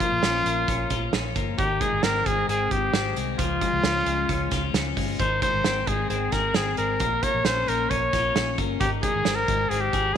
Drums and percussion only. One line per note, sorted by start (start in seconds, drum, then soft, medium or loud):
0.00 kick medium
0.00 closed hi-hat medium
0.23 snare medium
0.23 closed hi-hat medium
0.46 closed hi-hat medium
0.68 kick medium
0.68 closed hi-hat medium
0.90 kick medium
0.90 closed hi-hat medium
1.13 snare loud
1.13 closed hi-hat medium
1.36 kick medium
1.36 closed hi-hat medium
1.58 kick loud
1.58 closed hi-hat medium
1.81 kick medium
1.81 closed hi-hat medium
2.03 snare medium
2.03 closed hi-hat medium
2.26 kick medium
2.26 closed hi-hat medium
2.49 closed hi-hat medium
2.71 kick medium
2.71 closed hi-hat medium
2.94 snare loud
2.94 closed hi-hat medium
3.16 closed hi-hat medium
3.39 kick loud
3.39 closed hi-hat medium
3.61 kick medium
3.61 closed hi-hat medium
3.84 snare medium
3.84 closed hi-hat medium
4.06 closed hi-hat medium
4.29 kick medium
4.29 closed hi-hat medium
4.51 kick medium
4.51 snare soft
4.51 closed hi-hat medium
4.74 snare loud
4.74 closed hi-hat medium
4.97 kick medium
4.97 open hi-hat medium
5.20 kick loud
5.20 closed hi-hat medium
5.42 kick medium
5.42 closed hi-hat medium
5.64 snare loud
5.64 closed hi-hat medium
5.87 kick medium
5.87 closed hi-hat medium
6.10 closed hi-hat medium
6.32 kick medium
6.32 snare soft
6.32 closed hi-hat medium
6.54 snare loud
6.54 closed hi-hat medium
6.77 closed hi-hat medium
7.00 kick medium
7.00 closed hi-hat medium
7.23 kick medium
7.23 closed hi-hat medium
7.45 snare medium
7.45 closed hi-hat medium
7.68 closed hi-hat medium
7.91 kick medium
7.91 closed hi-hat medium
8.13 kick medium
8.13 snare soft
8.13 closed hi-hat medium
8.36 snare loud
8.36 closed hi-hat medium
8.58 kick medium
8.58 closed hi-hat medium
8.81 kick loud
8.81 closed hi-hat medium
9.03 kick medium
9.03 closed hi-hat medium
9.25 snare medium
9.25 closed hi-hat medium
9.48 kick medium
9.48 closed hi-hat medium
9.71 closed hi-hat medium
9.93 kick medium
9.93 closed hi-hat medium